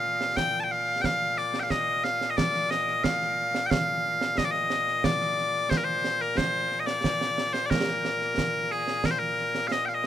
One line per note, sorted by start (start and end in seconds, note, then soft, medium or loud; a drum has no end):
0.00 10.07 A#2 medium
0.00 0.37 F5 loud
0.21 snare medium
0.37 0.60 G5 loud
0.37 concert bass drum medium
0.37 snare medium
0.60 0.72 G5 medium
0.60 0.64 A5 medium
0.72 1.02 F5 loud
1.02 1.38 F5 loud
1.02 1.05 G5 loud
1.02 concert bass drum medium
1.02 snare medium
1.37 1.60 D5 medium
1.37 snare soft
1.54 snare medium
1.60 1.70 F5 medium
1.60 1.63 G5 medium
1.70 2.04 D#5 loud
1.70 concert bass drum soft
1.70 snare medium
2.04 2.30 F5 loud
2.04 snare medium
2.21 snare medium
2.30 2.37 D#5 medium
2.37 2.70 D5 loud
2.37 concert bass drum medium
2.37 snare loud
2.54 snare soft
2.70 3.04 D#5 medium
2.70 snare medium
2.88 snare soft
3.04 3.66 F5 loud
3.04 concert bass drum medium
3.04 snare loud
3.21 snare soft
3.55 snare medium
3.66 3.71 G5 loud
3.71 4.38 F5 loud
3.71 concert bass drum medium
3.71 snare loud
4.21 snare medium
4.38 4.45 D#5 loud
4.38 concert bass drum medium
4.38 snare loud
4.45 4.51 D5 medium
4.51 5.04 D#5 loud
4.51 snare soft
4.70 snare medium
4.88 snare soft
5.04 5.70 D5 loud
5.04 concert bass drum medium
5.04 snare loud
5.21 snare soft
5.38 snare soft
5.70 5.77 C5 medium
5.70 concert bass drum medium
5.70 snare loud
5.77 5.84 A#4 medium
5.84 6.21 C5 medium
6.04 snare medium
6.21 6.37 A#4 medium
6.37 6.80 C5 loud
6.37 concert bass drum medium
6.37 snare loud
6.72 snare soft
6.80 6.86 D#5 medium
6.86 7.53 D5 medium
6.86 snare medium
7.04 concert bass drum medium
7.04 snare medium
7.21 snare medium
7.38 snare medium
7.53 7.66 C5 medium
7.53 snare medium
7.66 7.70 D5 medium
7.70 8.71 A#4 medium
7.70 concert bass drum medium
7.70 snare loud
7.88 snare soft
8.05 snare medium
8.21 snare soft
8.38 concert bass drum medium
8.38 snare loud
8.71 9.05 G#4 medium
8.71 snare soft
8.88 snare medium
9.04 9.11 A#4 medium
9.04 concert bass drum medium
9.04 snare medium
9.11 9.19 C5 medium
9.19 9.67 A#4 medium
9.38 snare soft
9.55 snare medium
9.67 9.72 F5 medium
9.72 9.85 D#5 medium
9.72 snare medium
9.85 9.94 F5 medium
9.85 9.89 G5 medium
9.85 snare soft
9.94 10.07 D#5 medium